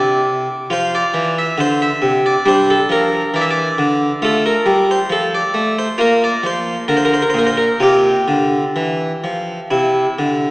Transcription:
Already playing: C3 E4 D5
0.70 F3 F4 C5
0.95 D5
1.14 E3
1.38 E5
1.58 D3 C5
1.82 E5
2.02 C3
2.26 D5
2.46 G3 D4 C5
2.71 A4
2.89 F3 A#4
3.34 E3 D5
3.41 E5
3.51 D5
3.78 D3
4.22 A3 F4 A4
4.46 A#4
4.66 G3
4.91 C5
5.10 F3 A4
5.35 D5
5.54 A3
5.79 C5
5.98 A#3 F4 A#4
6.24 D5
6.43 F3 C5
6.88 D3 A#4
6.97 C5
7.05 A#4
7.14 C5
7.22 A#4
7.30 C5
7.34 A#2
7.39 A#4
7.47 C5
7.57 A#4
7.80 C3 F4 G4
8.28 D3
8.76 E3
9.24 F3
9.71 C3 E4
10.19 D3

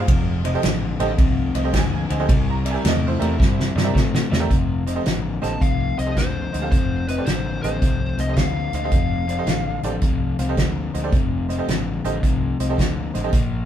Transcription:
0.08 F1 F2 C3, kick, ride
0.44 F2 C3 C5 D#5, ride
0.55 G4 A4 C5 D#5
0.63 A1 F2 D3, snare, ride
0.99 A1 F2 D3 G4 A4 C5 D#5, ride
1.18 C2 F2 C3, kick, ride
1.55 C2 F2 C3 C5 D#5, ride
1.64 G4 A4 C5 D#5
1.73 D2 F2 D3 G5, kick, snare, ride
1.77 G#5
2.09 D2 F2 D3 C5 D#5, ride
2.20 G4 A4 C5 D#5
2.28 C2 C3 G3, kick, ride
2.50 A#5
2.65 C3 G3 D5 E5, ride
2.71 G4 A#4 D5 E5 G#5
2.84 E2 C3 A3, snare, ride
2.88 D#5
3.07 E4 C5
3.19 E2 C3 A3 G4 A#4 D5 E5, ride
3.38 G2 C3 G3, kick, snare
3.60 snare
3.75 G2 C3 G3 D5 E5, snare
3.84 G4 A#4 D5 E5
3.94 A2 C3 A3, kick, snare
4.15 snare
4.30 E2 C3 A3 D5 E5, snare
4.40 G4 A#4 D5 E5
4.49 F1 F2 C3, kick, closed hi-hat
4.86 F2 C3 C5 D#5, closed hi-hat
4.95 G4 A4 C5 D#5
5.05 A1 F2 D3, snare, closed hi-hat
5.41 A1 F2 D3 G4 A4 C5 D#5 A5, snare, closed hi-hat
5.60 C2 F2 C3 F5, kick, closed hi-hat
5.97 C2 F2 C3 C5 D#5, closed hi-hat
6.06 G4 A4 C5 D#5
6.16 D2 F2 D3 C5, kick, snare, closed hi-hat
6.53 D2 F2 D3 C5 D#5, closed hi-hat
6.62 G4 A4 C5 F5
6.71 F1 F2 C3 C5, kick, closed hi-hat
7.08 F2 C3 B4 C5 D#5, closed hi-hat
7.18 G4 A4 C5 D5
7.26 A1 F2 D3 C5, snare, closed hi-hat
7.63 A1 F2 D3 G4 A4 C5 D#5, closed hi-hat
7.81 C2 F2 C3, kick, closed hi-hat
8.18 C2 F2 C3 C5 D#5, closed hi-hat
8.29 G4 A4 C5 D#5
8.36 D2 F2 D3 F5, kick, snare, closed hi-hat
8.73 D2 F2 D3 C5 D#5 F5, closed hi-hat
8.84 G4 A4 C5 D#5
8.91 F1 F2 C3, kick, closed hi-hat
9.28 F2 C3 C5 D5, closed hi-hat
9.38 G4 A4 C5 D#5
9.46 A1 F2 D3, snare, closed hi-hat
9.83 A1 F2 D3 G4 A4 C5 D5, closed hi-hat
10.01 C2 F2 C3, kick, closed hi-hat
10.39 C2 F2 C3 C5 F5, closed hi-hat
10.49 G4 A4 C5 D#5
10.57 D2 F2 D3, kick, snare, closed hi-hat
10.94 D2 F2 D3 C5 D#5, closed hi-hat
11.03 G4 A4 C5 D5
11.12 F1 F2 C3, kick, closed hi-hat
11.49 F2 C3 C5 D#5, closed hi-hat
11.59 G4 A4 C5 D#5
11.68 A1 F2 D3, snare, closed hi-hat
12.04 A1 F2 D3 G4 A4 C5 D#5, closed hi-hat
12.23 C2 F2 C3, kick, closed hi-hat
12.59 C2 F2 C3 C5 D#5, closed hi-hat
12.69 G4 A4 C5 D#5
12.78 D2 F2 D3, kick, snare, closed hi-hat
13.14 A1 F2 D3 C5 D#5, closed hi-hat
13.24 G4 A4 C5 D#5
13.33 A#1 A#2 F3, kick, closed hi-hat

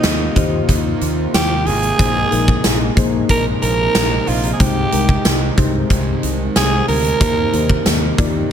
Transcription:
Already playing: C3 D#3 A#3 D#4 F4 G4 C5 D#5
0.02 D#2 D#3 A#3 D#4, snare, closed hi-hat, tambourine
0.36 D#2 A#3 D#4 G4 C5, kick, closed hi-hat
0.68 D#2 D#3 A#3 D#4, kick, closed hi-hat
1.01 D#2, closed hi-hat
1.34 D#2 G4, snare, closed hi-hat, tambourine
1.65 G#1 A#3 D#4 G#4, open hi-hat
1.83 closed hi-hat
1.98 A#1 A#2 F3 G#3 A#3 D#4 G#4 C5, kick, closed hi-hat
2.02 A#3
2.31 A#1 A#3 D#4 G#4 A#4, closed hi-hat
2.48 kick
2.64 A#1, snare, closed hi-hat, tambourine
2.97 A#1 A#3 D#4 G#4 C5, kick, closed hi-hat
3.29 A#1 A#2 F3 A#3 A#4, kick, closed hi-hat
3.62 A#1 A#4, closed hi-hat
3.95 A#1, snare, closed hi-hat, tambourine
4.26 A#1 F3 A#3 F4, open hi-hat
4.44 closed hi-hat
4.53 G#4
4.59 C2 G#2 C3 D#3 G#3 D#4 G4 C5, kick, closed hi-hat
4.92 C2 G#3 D#4 G4 A#4, closed hi-hat
5.09 kick
5.25 C2 G#2 D#3 G#3, snare, closed hi-hat, tambourine
5.57 C2 G#3 D#4 G4 C5, kick, closed hi-hat
5.90 C2 G#2 D#3 G#3, kick, closed hi-hat
6.23 C2, closed hi-hat
6.56 C2 G#4, snare, closed hi-hat, tambourine
6.88 D2 D#3 G#3 A#4, open hi-hat
7.04 closed hi-hat
7.20 D#2 D#3 A#3 D#4 G4 C5, kick, closed hi-hat
7.53 D#2 A#3 D#4 G4 C5, closed hi-hat
7.69 kick
7.85 D#2 D#3 A#3 D#4, snare, closed hi-hat, tambourine
8.18 D#2 A#3 D#4 F4 D5, kick, closed hi-hat
8.25 G4

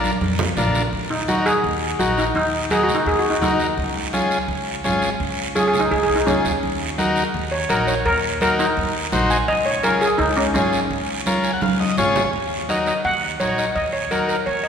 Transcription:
Already playing: D4 F4 A#4 D5
0.04 high conga, short guiro
0.21 F2, high conga, long guiro
0.39 low conga
0.57 A#1 D4 F4 A#4, low conga, short guiro
0.75 low conga, short guiro
0.92 D#2, high conga, long guiro
1.10 D#4
1.28 D#4 F#4 A#4, high conga, short guiro
1.46 G#4, short guiro
1.64 D#2, high conga, long guiro
1.99 A#1 D#4 F#4 A#4, high conga, short guiro
2.18 D#4, short guiro
2.34 D#2 D#4, high conga, long guiro
2.70 D#4 F#4 G#4 A#4, high conga, short guiro
2.83 F#4
2.88 low conga, short guiro
2.94 D#4
3.06 D#2 G#4, high conga, long guiro
3.19 F#4
3.30 D#4
3.41 D#2 D#4 F#4 A#4, high conga, low conga, short guiro
3.60 short guiro
3.77 C#2, high conga, long guiro
4.13 C#4 F4 G#4, high conga, short guiro
4.31 short guiro
4.48 C#2, high conga, long guiro
4.84 G#1 C#4 F4 G#4, high conga, short guiro
5.02 short guiro
5.20 C#2, high conga, long guiro
5.55 C#4 F4 G#4, high conga, short guiro
5.67 G#4
5.73 low conga, short guiro
5.80 D#4
5.91 C#2 G#4, high conga, long guiro
6.03 G#4
6.10 C2
6.16 D#4
6.26 C#2 C#4 F4 G#4, high conga, low conga, short guiro
6.45 D#2, short guiro
6.63 D#2, high conga, long guiro
6.98 D#4 F#4 A#4, high conga, short guiro
7.16 short guiro
7.34 D#2, high conga, long guiro
7.51 C#5
7.69 A#1 D#4 F#4 A#4, high conga, short guiro
7.87 C#5, short guiro
8.05 D#2 A#4, high conga, long guiro
8.41 D#4 F#4 A#4, high conga, short guiro
8.59 D#4, short guiro
8.77 D#2, high conga, long guiro
9.12 A#1 D#4 F#4 C5, high conga, low conga, short guiro
9.30 G#5, short guiro
9.48 C#2 D#5, high conga, long guiro
9.66 C#5
9.83 C#4 F4 G#4 A#4, high conga, short guiro
10.01 G#4, short guiro
10.18 C#2 D#4, long guiro
10.37 C#4
10.54 G#1 C#4 F4 G#4, high conga, short guiro
10.73 short guiro
10.90 C#2, high conga, long guiro
11.26 C#4 F4 A#4, high conga, short guiro
11.44 G#5, short guiro
11.53 F#5
11.61 C#2 F5, high conga, long guiro
11.80 D#5, high conga
11.97 G#1 C#4 F4 G#4 C#5, low conga, short guiro
12.15 low conga, short guiro
12.33 D#2, high conga, long guiro
12.69 D#4 F#4 A#4 D#5, high conga, short guiro
12.87 D#5, short guiro
13.04 D#2 F#5, high conga, long guiro
13.40 A#1 D#4 F#4 A#4 C#5, high conga, short guiro
13.58 D#5, short guiro
13.75 D#2 D#5, high conga, long guiro
13.93 C#5
14.11 D#4 F#4 A#4, high conga, short guiro
14.28 A#4, short guiro
14.46 D#2 C#5, high conga, long guiro
14.64 D#5

